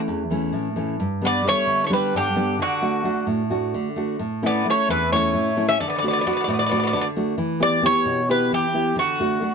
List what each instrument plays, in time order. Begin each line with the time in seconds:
Already playing: nylon-string guitar E3 A3 C#4
0.08 nylon-string guitar E2
0.30 nylon-string guitar E3 A3 C#4
0.53 nylon-string guitar A2
0.76 nylon-string guitar E3 A3 C#4
1.00 nylon-string guitar G2
1.21 nylon-string guitar G3 B3 D4, bouzouki B3
1.27 bouzouki D5
1.44 nylon-string guitar G3 B3 D4, bouzouki A3
1.49 bouzouki C#5
1.67 nylon-string guitar D3
1.84 bouzouki A3 C#5
1.90 nylon-string guitar G3 B3 D4, bouzouki B4
1.94 bouzouki G3
2.14 nylon-string guitar G2, bouzouki D3 G4
2.36 nylon-string guitar G3 B3 D4
2.59 nylon-string guitar D3, bouzouki D3 F#4
2.82 nylon-string guitar A3 D4 F#4
3.04 nylon-string guitar A3 D4 F#4
3.27 nylon-string guitar A2
3.50 nylon-string guitar A3 D4 F#4
3.74 nylon-string guitar D3
3.96 nylon-string guitar A3 D4 F#4
4.19 nylon-string guitar A2
4.42 nylon-string guitar A3 C#4 E4, bouzouki B3
4.46 bouzouki D5
4.65 nylon-string guitar A3 C#4 E4
4.70 bouzouki A3 C#5
4.89 nylon-string guitar E2, bouzouki E3 B4
5.12 nylon-string guitar A3 C#4 E4, bouzouki A3 C#5
5.34 nylon-string guitar A2
5.57 nylon-string guitar A3 C#4 E4
5.69 bouzouki C#4 E5
5.80 nylon-string guitar D3, bouzouki A3 D5
5.88 bouzouki B3 D5
5.96 bouzouki B3 D5
6.02 nylon-string guitar A3 D4 F#4, bouzouki B3
6.08 bouzouki B3 D5
6.13 bouzouki D5
6.19 bouzouki B3 D5
6.26 nylon-string guitar A3 D4 F#4, bouzouki B3 D5
6.33 bouzouki B3 D5
6.41 bouzouki B3 D5
6.48 nylon-string guitar A2, bouzouki B3 D5
6.53 bouzouki B3
6.59 bouzouki B3 D5
6.66 bouzouki B3 D5
6.71 nylon-string guitar A3 D4 F#4, bouzouki D5
6.76 bouzouki B3 D5
6.83 bouzouki B3
6.87 bouzouki B3 D5
6.93 nylon-string guitar D3, bouzouki B3 D5
7.01 bouzouki D5
7.16 nylon-string guitar A3 D4 F#4
7.38 nylon-string guitar E3
7.60 nylon-string guitar B3 E4 G4, bouzouki D5
7.82 nylon-string guitar B3 E4 G4, bouzouki C#5
8.05 nylon-string guitar B2
8.29 nylon-string guitar B3 E4 G4, bouzouki B4
8.52 nylon-string guitar E3, bouzouki G4
8.74 nylon-string guitar B3 E4 G4
8.96 nylon-string guitar D3, bouzouki F#4
9.20 nylon-string guitar A3 D4 F#4
9.41 nylon-string guitar A3 D4 F#4